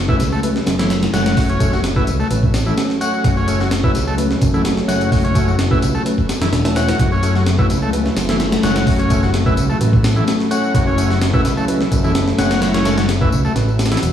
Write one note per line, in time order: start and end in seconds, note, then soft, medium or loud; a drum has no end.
0.00 0.21 F#1 loud
0.00 14.13 F#3 medium
0.00 14.13 A3 medium
0.00 6.98 C#4 medium
0.09 0.21 A3 medium
0.09 0.21 C#4 medium
0.09 0.17 E4 loud
0.09 0.21 F#4 medium
0.09 0.21 B4 loud
0.09 kick medium
0.09 tambourine soft
0.20 0.60 C#2 medium
0.20 snare soft
0.20 closed hi-hat medium
0.20 tambourine medium
0.32 0.40 A3 medium
0.32 tambourine soft
0.43 0.57 A3 medium
0.43 0.57 C#4 medium
0.43 0.57 F#4 medium
0.43 0.57 B4 medium
0.43 closed hi-hat medium
0.43 tambourine soft
0.56 snare medium
0.56 tambourine soft
0.66 1.07 F#1 medium
0.66 snare loud
0.66 closed hi-hat medium
0.66 tambourine medium
0.79 0.87 E3 medium
0.79 1.11 A3 medium
0.79 1.11 C#4 medium
0.79 1.11 F#4 medium
0.79 1.11 A4 medium
0.79 snare loud
0.79 closed hi-hat medium
0.79 tambourine soft
0.90 snare loud
0.90 closed hi-hat medium
0.90 tambourine soft
1.02 snare medium
1.02 closed hi-hat medium
1.02 tambourine soft
1.13 2.09 F#1 medium
1.13 1.58 A3 medium
1.13 1.58 C#4 medium
1.13 1.58 F#4 medium
1.13 1.36 F#4 medium
1.13 1.58 C#5 loud
1.13 snare loud
1.13 closed hi-hat medium
1.13 tambourine medium
1.26 snare loud
1.26 closed hi-hat medium
1.26 tambourine soft
1.37 1.48 F#3 medium
1.37 kick loud
1.37 open hi-hat medium
1.37 tambourine soft
1.49 1.72 C#4 medium
1.49 closed hi-hat soft
1.49 tambourine soft
1.60 1.74 A3 medium
1.60 1.74 C#4 medium
1.60 1.74 F#4 medium
1.60 1.74 A4 medium
1.60 kick loud
1.60 closed hi-hat medium
1.60 tambourine medium
1.73 1.81 F#3 medium
1.73 snare soft
1.73 tambourine soft
1.84 snare loud
1.84 closed hi-hat medium
1.84 tambourine soft
1.96 2.08 A3 medium
1.96 2.08 C#4 medium
1.96 2.04 E4 medium
1.96 2.08 F#4 medium
1.96 2.08 B4 loud
1.96 kick loud
1.96 tambourine soft
2.07 2.23 C#2 medium
2.07 closed hi-hat medium
2.07 tambourine medium
2.20 2.28 A3 medium
2.20 tambourine soft
2.31 2.71 A1 medium
2.31 2.44 A3 medium
2.31 2.44 C#4 medium
2.31 2.44 F#4 medium
2.31 2.44 B4 medium
2.31 closed hi-hat medium
2.31 tambourine soft
2.43 kick medium
2.43 tambourine soft
2.54 snare loud
2.54 closed hi-hat medium
2.54 tambourine medium
2.66 2.74 E3 medium
2.66 2.98 A3 medium
2.66 2.98 C#4 medium
2.66 2.98 F#4 medium
2.66 2.98 A4 medium
2.66 tambourine soft
2.78 snare loud
2.78 closed hi-hat medium
2.78 tambourine soft
2.90 snare soft
2.90 tambourine soft
3.01 3.45 A3 medium
3.01 3.45 C#4 medium
3.01 3.45 F#4 medium
3.01 3.23 F#4 medium
3.01 3.45 C#5 loud
3.01 closed hi-hat medium
3.01 tambourine medium
3.14 tambourine soft
3.24 3.96 F#1 loud
3.24 3.36 F#3 medium
3.24 kick loud
3.24 closed hi-hat medium
3.24 tambourine soft
3.37 3.59 C#4 medium
3.37 tambourine soft
3.48 3.61 A3 medium
3.48 3.61 C#4 medium
3.48 3.61 F#4 medium
3.48 3.61 A4 medium
3.48 closed hi-hat medium
3.48 tambourine medium
3.60 3.68 F#3 medium
3.60 snare soft
3.60 tambourine soft
3.71 snare loud
3.71 closed hi-hat medium
3.71 tambourine soft
3.84 3.96 A3 medium
3.84 3.96 C#4 medium
3.84 3.92 E4 loud
3.84 3.96 F#4 medium
3.84 3.96 B4 loud
3.84 kick loud
3.84 tambourine soft
3.95 4.35 C#2 loud
3.95 snare soft
3.95 closed hi-hat medium
3.95 tambourine medium
4.07 4.15 A3 medium
4.07 tambourine soft
4.18 4.31 A3 medium
4.18 4.31 C#4 medium
4.18 4.31 F#4 medium
4.18 4.31 B4 medium
4.18 closed hi-hat medium
4.18 tambourine soft
4.31 snare medium
4.31 tambourine soft
4.42 4.82 F#1 loud
4.42 kick medium
4.42 closed hi-hat medium
4.42 tambourine medium
4.54 4.62 E3 medium
4.54 4.86 A3 medium
4.54 4.86 C#4 medium
4.54 4.86 F#4 medium
4.54 4.86 A4 medium
4.54 tambourine soft
4.65 snare loud
4.65 closed hi-hat medium
4.65 tambourine soft
4.77 snare medium
4.77 tambourine soft
4.88 5.84 F#1 loud
4.88 5.33 A3 medium
4.88 5.33 C#4 medium
4.88 5.33 F#4 medium
4.88 5.11 F#4 medium
4.88 5.33 C#5 loud
4.88 snare soft
4.88 closed hi-hat medium
4.88 tambourine medium
5.01 closed hi-hat soft
5.01 tambourine soft
5.12 5.23 F#3 medium
5.12 kick loud
5.12 open hi-hat medium
5.12 tambourine soft
5.24 5.47 C#4 medium
5.24 closed hi-hat soft
5.24 tambourine soft
5.35 5.49 A3 medium
5.35 5.49 C#4 medium
5.35 5.49 F#4 medium
5.35 5.49 A4 medium
5.35 kick medium
5.35 closed hi-hat medium
5.35 tambourine medium
5.48 5.56 F#3 medium
5.48 tambourine soft
5.59 snare loud
5.59 closed hi-hat medium
5.59 tambourine soft
5.71 5.83 A3 medium
5.71 5.83 C#4 medium
5.71 5.79 E4 medium
5.71 5.83 F#4 medium
5.71 5.83 B4 loud
5.71 kick medium
5.71 tambourine soft
5.82 5.98 C#2 medium
5.82 closed hi-hat medium
5.82 tambourine medium
5.95 6.02 A3 medium
5.95 tambourine soft
6.05 6.19 A3 medium
6.05 6.19 C#4 medium
6.05 6.19 F#4 medium
6.05 6.19 B4 medium
6.05 closed hi-hat medium
6.05 tambourine soft
6.18 kick medium
6.18 tambourine soft
6.29 snare loud
6.29 closed hi-hat medium
6.29 tambourine medium
6.41 6.49 F#2 loud
6.41 6.49 E3 medium
6.41 snare loud
6.41 closed hi-hat medium
6.41 tambourine soft
6.53 6.93 E1 loud
6.53 snare loud
6.53 closed hi-hat medium
6.53 tambourine soft
6.65 6.74 A3 medium
6.65 6.74 C#4 medium
6.65 6.74 F#4 medium
6.65 6.74 A4 medium
6.65 snare loud
6.65 closed hi-hat medium
6.76 6.89 A3 medium
6.76 6.89 C#4 medium
6.76 6.89 F#4 medium
6.76 6.98 F#4 medium
6.76 6.89 C#5 medium
6.76 snare loud
6.76 closed hi-hat medium
6.76 tambourine medium
6.89 snare loud
6.89 closed hi-hat medium
6.89 tambourine soft
6.99 7.71 F#1 medium
6.99 7.11 F#3 medium
6.99 14.13 E4 medium
6.99 kick loud
6.99 closed hi-hat medium
6.99 tambourine soft
7.12 7.34 C#4 medium
7.12 tambourine soft
7.23 7.36 A3 medium
7.23 7.36 C#4 medium
7.23 7.36 F#4 medium
7.23 7.36 A4 medium
7.23 closed hi-hat medium
7.23 tambourine medium
7.35 7.43 F#3 medium
7.35 snare soft
7.35 tambourine soft
7.46 snare loud
7.46 closed hi-hat medium
7.46 tambourine soft
7.59 7.71 A3 medium
7.59 7.71 C#4 medium
7.59 7.67 E4 medium
7.59 7.71 F#4 medium
7.59 7.71 B4 loud
7.59 kick loud
7.59 tambourine soft
7.70 8.10 C#2 medium
7.70 snare soft
7.70 closed hi-hat medium
7.70 tambourine medium
7.82 7.90 A3 medium
7.82 tambourine soft
7.93 8.07 A3 medium
7.93 8.07 C#4 medium
7.93 8.07 F#4 medium
7.93 8.07 B4 medium
7.93 closed hi-hat medium
7.93 tambourine soft
8.06 snare medium
8.06 tambourine soft
8.17 8.57 F#1 loud
8.17 snare loud
8.17 closed hi-hat medium
8.17 tambourine medium
8.29 8.37 E3 medium
8.29 8.61 A3 medium
8.29 8.61 C#4 medium
8.29 8.61 F#4 medium
8.29 8.61 A4 medium
8.29 snare loud
8.29 closed hi-hat medium
8.40 snare loud
8.40 closed hi-hat medium
8.40 tambourine soft
8.52 snare loud
8.52 closed hi-hat medium
8.52 tambourine soft
8.63 9.59 F#1 medium
8.63 9.08 A3 medium
8.63 9.08 C#4 medium
8.63 9.08 F#4 medium
8.63 8.86 F#4 medium
8.63 9.08 C#5 loud
8.63 snare loud
8.63 closed hi-hat medium
8.63 tambourine medium
8.76 snare loud
8.76 closed hi-hat medium
8.76 tambourine soft
8.87 8.98 F#3 medium
8.87 kick loud
8.87 open hi-hat medium
8.87 tambourine soft
8.99 9.22 C#4 medium
8.99 closed hi-hat soft
8.99 tambourine soft
9.10 9.24 A3 medium
9.10 9.24 C#4 medium
9.10 9.24 F#4 medium
9.10 9.24 A4 medium
9.10 kick loud
9.10 closed hi-hat medium
9.10 tambourine medium
9.23 9.31 F#3 medium
9.23 snare soft
9.23 tambourine soft
9.34 snare loud
9.34 closed hi-hat medium
9.34 tambourine soft
9.46 9.58 A3 medium
9.46 9.58 C#4 medium
9.46 9.54 E4 loud
9.46 9.58 F#4 medium
9.46 9.58 B4 loud
9.46 kick loud
9.46 tambourine soft
9.57 9.73 C#2 medium
9.57 closed hi-hat medium
9.57 tambourine medium
9.69 9.77 A3 medium
9.69 tambourine soft
9.81 10.21 A1 medium
9.81 9.94 A3 medium
9.81 9.94 C#4 medium
9.81 9.94 F#4 medium
9.81 9.94 B4 medium
9.81 closed hi-hat medium
9.81 tambourine soft
9.93 kick medium
9.93 tambourine soft
10.04 snare loud
10.04 closed hi-hat medium
10.04 tambourine medium
10.16 10.24 E3 medium
10.16 10.48 A3 medium
10.16 10.48 C#4 medium
10.16 10.48 F#4 medium
10.16 10.48 A4 medium
10.16 tambourine soft
10.27 snare loud
10.27 closed hi-hat medium
10.27 tambourine soft
10.40 snare soft
10.40 tambourine soft
10.51 10.95 A3 medium
10.51 10.95 C#4 medium
10.51 10.95 F#4 medium
10.51 10.73 F#4 medium
10.51 10.95 C#5 loud
10.51 closed hi-hat medium
10.51 tambourine medium
10.63 tambourine soft
10.74 11.46 F#1 loud
10.74 10.86 F#3 medium
10.74 kick loud
10.74 closed hi-hat medium
10.74 tambourine soft
10.87 11.09 C#4 medium
10.87 tambourine soft
10.98 11.11 A3 medium
10.98 11.11 C#4 medium
10.98 11.11 F#4 medium
10.98 11.11 A4 medium
10.98 closed hi-hat medium
10.98 tambourine medium
11.10 11.18 F#3 medium
11.10 snare soft
11.10 tambourine soft
11.22 snare loud
11.22 closed hi-hat medium
11.22 tambourine soft
11.33 11.46 A3 medium
11.33 11.46 C#4 medium
11.33 11.42 E4 loud
11.33 11.46 F#4 medium
11.33 11.46 B4 loud
11.33 kick medium
11.33 tambourine soft
11.45 11.86 C#2 loud
11.45 snare medium
11.45 closed hi-hat medium
11.45 tambourine medium
11.57 11.65 A3 medium
11.57 tambourine soft
11.68 11.81 A3 medium
11.68 11.81 C#4 medium
11.68 11.81 F#4 medium
11.68 11.81 B4 medium
11.68 closed hi-hat medium
11.68 tambourine soft
11.81 snare medium
11.81 tambourine soft
11.92 12.32 F#1 loud
11.92 kick loud
11.92 closed hi-hat medium
11.92 tambourine medium
12.04 12.12 E3 medium
12.04 12.36 A3 medium
12.04 12.36 C#4 medium
12.04 12.36 F#4 medium
12.04 12.36 A4 medium
12.04 tambourine soft
12.15 snare loud
12.15 closed hi-hat medium
12.15 tambourine soft
12.28 snare medium
12.28 tambourine soft
12.38 13.34 F#1 loud
12.38 12.83 A3 medium
12.38 12.83 C#4 medium
12.38 12.83 F#4 medium
12.38 12.61 F#4 medium
12.38 12.83 C#5 loud
12.38 snare loud
12.38 closed hi-hat medium
12.38 tambourine medium
12.51 snare loud
12.51 closed hi-hat medium
12.62 12.73 F#3 medium
12.62 snare loud
12.62 closed hi-hat medium
12.62 tambourine soft
12.74 12.97 C#4 medium
12.74 snare loud
12.74 closed hi-hat medium
12.85 12.99 A3 medium
12.85 12.99 C#4 medium
12.85 12.99 F#4 medium
12.85 12.99 A4 loud
12.85 snare loud
12.85 closed hi-hat medium
12.85 tambourine medium
12.98 13.06 F#3 medium
12.98 snare loud
12.98 closed hi-hat medium
12.98 tambourine soft
13.09 snare loud
13.09 closed hi-hat medium
13.09 tambourine soft
13.21 13.33 A3 loud
13.21 13.33 C#4 medium
13.21 13.29 E4 medium
13.21 13.33 F#4 medium
13.21 13.33 B4 loud
13.21 kick loud
13.21 tambourine soft
13.32 13.48 C#2 medium
13.32 tambourine medium
13.45 13.53 A3 medium
13.45 tambourine soft
13.55 13.96 A1 medium
13.55 13.69 A3 medium
13.55 13.69 C#4 medium
13.55 13.69 F#4 medium
13.55 13.69 B4 medium
13.55 snare soft
13.55 closed hi-hat medium
13.55 tambourine soft
13.68 tambourine soft
13.79 snare medium
13.79 closed hi-hat medium
13.79 tambourine medium
13.86 snare medium
13.86 closed hi-hat medium
13.91 13.99 E3 medium
13.91 snare medium
13.91 closed hi-hat medium
13.91 tambourine soft
13.97 snare medium
13.97 closed hi-hat medium
14.02 14.13 E1 medium
14.02 closed hi-hat medium
14.02 tambourine soft